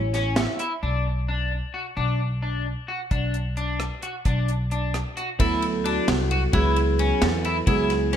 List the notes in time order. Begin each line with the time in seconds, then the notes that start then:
Already playing: A1 E4 C#5
0.14 C#4, snare, closed hi-hat
0.36 E5, snare, closed hi-hat
0.59 E4, closed hi-hat
0.83 B1 D4
1.28 D4
1.74 F#4
1.97 B1 D4
2.42 D4
2.88 F#4
3.11 B1 D4, kick, closed hi-hat
3.34 closed hi-hat
3.57 D4, closed hi-hat
3.80 cross-stick, closed hi-hat
4.02 F#4, closed hi-hat
4.25 B1 D4, kick, closed hi-hat
4.48 closed hi-hat
4.71 D4, closed hi-hat
4.94 cross-stick, closed hi-hat
5.17 F#4, closed hi-hat
5.39 D2 F#3 B3 E4 A4, kick, ride
5.62 ride
5.84 D4 F#4, ride
6.08 C2, snare, ride
6.31 F#4, ride
6.53 C#2 F#3 B3 E4 G#4 B4, kick, ride
6.76 ride
6.99 C#4, ride
7.22 E2 A4, snare, ride
7.45 E4, ride
7.67 C#2 F#3 B3 E4 G#4, kick, ride
7.90 snare, ride
8.13 C#4 B4, snare, ride